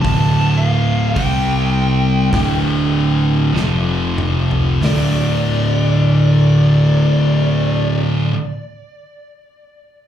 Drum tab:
HH |o---o---o-------|o---------------|
SD |--------o---o---|o---------------|
T2 |--------------o-|----------------|
FT |---------------o|----------------|
BD |o---o---o-------|----------------|